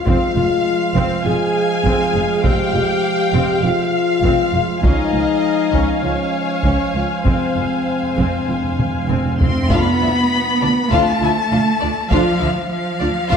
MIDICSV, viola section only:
0, 0, Header, 1, 2, 480
1, 0, Start_track
1, 0, Key_signature, -4, "minor"
1, 0, Tempo, 596421
1, 54, Time_signature, 4, 2, 24, 8
1, 4375, Tempo, 610376
1, 7735, Tempo, 599401
1, 10666, End_track
2, 0, Start_track
2, 0, Title_t, "Viola section"
2, 0, Program_c, 0, 48
2, 48, Note_on_c, 0, 60, 59
2, 48, Note_on_c, 0, 77, 56
2, 273, Note_off_c, 0, 60, 0
2, 287, Note_on_c, 0, 65, 45
2, 352, Note_off_c, 0, 65, 0
2, 772, Note_on_c, 0, 60, 69
2, 995, Note_off_c, 0, 60, 0
2, 1004, Note_on_c, 0, 65, 45
2, 1068, Note_off_c, 0, 65, 0
2, 1489, Note_on_c, 0, 60, 59
2, 1712, Note_off_c, 0, 60, 0
2, 1720, Note_on_c, 0, 65, 50
2, 1784, Note_off_c, 0, 65, 0
2, 1958, Note_on_c, 0, 60, 56
2, 2186, Note_off_c, 0, 60, 0
2, 2204, Note_on_c, 0, 65, 36
2, 2268, Note_off_c, 0, 65, 0
2, 2688, Note_on_c, 0, 60, 59
2, 2913, Note_off_c, 0, 60, 0
2, 2934, Note_on_c, 0, 65, 42
2, 2999, Note_off_c, 0, 65, 0
2, 3409, Note_on_c, 0, 60, 62
2, 3634, Note_off_c, 0, 60, 0
2, 3654, Note_on_c, 0, 65, 44
2, 3718, Note_off_c, 0, 65, 0
2, 3858, Note_off_c, 0, 77, 0
2, 3885, Note_on_c, 0, 61, 49
2, 3886, Note_on_c, 0, 77, 50
2, 4113, Note_off_c, 0, 61, 0
2, 4129, Note_on_c, 0, 65, 33
2, 4194, Note_off_c, 0, 65, 0
2, 4603, Note_on_c, 0, 61, 54
2, 4828, Note_off_c, 0, 61, 0
2, 4847, Note_on_c, 0, 65, 34
2, 4910, Note_off_c, 0, 65, 0
2, 5323, Note_on_c, 0, 61, 45
2, 5548, Note_off_c, 0, 61, 0
2, 5559, Note_on_c, 0, 65, 37
2, 5622, Note_off_c, 0, 65, 0
2, 5808, Note_on_c, 0, 60, 41
2, 6033, Note_off_c, 0, 60, 0
2, 6045, Note_on_c, 0, 65, 28
2, 6108, Note_off_c, 0, 65, 0
2, 6526, Note_on_c, 0, 60, 47
2, 6754, Note_off_c, 0, 60, 0
2, 6766, Note_on_c, 0, 65, 27
2, 6829, Note_off_c, 0, 65, 0
2, 7245, Note_on_c, 0, 60, 42
2, 7474, Note_off_c, 0, 60, 0
2, 7485, Note_on_c, 0, 65, 32
2, 7542, Note_off_c, 0, 77, 0
2, 7548, Note_off_c, 0, 65, 0
2, 7721, Note_on_c, 0, 65, 56
2, 7722, Note_on_c, 0, 62, 53
2, 7953, Note_off_c, 0, 62, 0
2, 7953, Note_off_c, 0, 65, 0
2, 7969, Note_on_c, 0, 62, 37
2, 7970, Note_on_c, 0, 53, 34
2, 8033, Note_off_c, 0, 62, 0
2, 8034, Note_off_c, 0, 53, 0
2, 8450, Note_on_c, 0, 62, 47
2, 8454, Note_on_c, 0, 65, 42
2, 8514, Note_off_c, 0, 62, 0
2, 8518, Note_off_c, 0, 65, 0
2, 8697, Note_on_c, 0, 62, 56
2, 8699, Note_on_c, 0, 65, 57
2, 8922, Note_off_c, 0, 62, 0
2, 8923, Note_off_c, 0, 65, 0
2, 8935, Note_on_c, 0, 53, 50
2, 8936, Note_on_c, 0, 62, 45
2, 8999, Note_off_c, 0, 53, 0
2, 9000, Note_off_c, 0, 62, 0
2, 9186, Note_on_c, 0, 62, 44
2, 9188, Note_on_c, 0, 65, 45
2, 9250, Note_off_c, 0, 62, 0
2, 9252, Note_off_c, 0, 65, 0
2, 9416, Note_on_c, 0, 62, 48
2, 9419, Note_on_c, 0, 65, 50
2, 9481, Note_off_c, 0, 62, 0
2, 9483, Note_off_c, 0, 65, 0
2, 9659, Note_on_c, 0, 62, 56
2, 9659, Note_on_c, 0, 65, 59
2, 9883, Note_off_c, 0, 62, 0
2, 9883, Note_off_c, 0, 65, 0
2, 9892, Note_on_c, 0, 53, 40
2, 9896, Note_on_c, 0, 62, 38
2, 9956, Note_off_c, 0, 53, 0
2, 9960, Note_off_c, 0, 62, 0
2, 10375, Note_on_c, 0, 62, 49
2, 10376, Note_on_c, 0, 65, 57
2, 10439, Note_off_c, 0, 62, 0
2, 10440, Note_off_c, 0, 65, 0
2, 10612, Note_on_c, 0, 65, 69
2, 10613, Note_on_c, 0, 62, 57
2, 10666, Note_off_c, 0, 62, 0
2, 10666, Note_off_c, 0, 65, 0
2, 10666, End_track
0, 0, End_of_file